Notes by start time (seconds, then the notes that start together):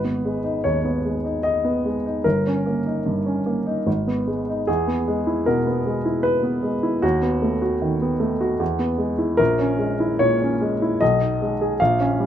Already playing: G#1 B4
0.05 B3
0.25 G#3
0.44 D#4
0.64 D#2 C#5
0.85 B3
1.05 G#3
1.25 D#4
1.43 D#5
1.65 B3
1.86 G#3
2.06 D#4
2.24 G1 A#4
2.47 C#4
2.66 A#3
2.86 D#4
3.06 G2
3.26 C#4
3.46 A#3
3.67 D#4
3.87 G#1
4.07 B3
4.28 G#3
4.49 D#4
4.67 E2 G#4
4.88 B3
5.08 G#3
5.27 E4
5.46 B2 A#4
5.67 B3
5.86 G#3
6.05 E4
6.23 B4
6.43 B3
6.63 G#3
6.83 E4
7.02 D#2 F#4
7.22 B3
7.42 A3
7.62 F#4
7.82 D#3
8.02 B3
8.20 A3
8.41 F#4
8.60 E2
8.79 B3
8.98 G#3
9.19 E4
9.37 A#1 A#4
9.59 C#4
9.79 G#3
10.00 E4
10.19 A#2 C#5
10.42 C#4
10.61 G#3
10.82 E4
11.01 B1 D#5
11.22 D#4
11.42 G#3
11.61 G#4
11.80 A#1 F5
12.00 C#4
12.20 G3